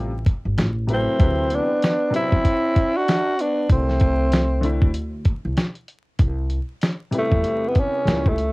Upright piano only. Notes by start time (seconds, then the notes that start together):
Already playing: A3 F4
0.87 C3 F#3 E4 B4
1.19 C3 F#3 E4 B4
2.10 C3 F#3 B3 E4
4.61 D3 A3 C4 E4
7.11 C3 G3 B3 E4
8.05 C#3 G3 A#3 E4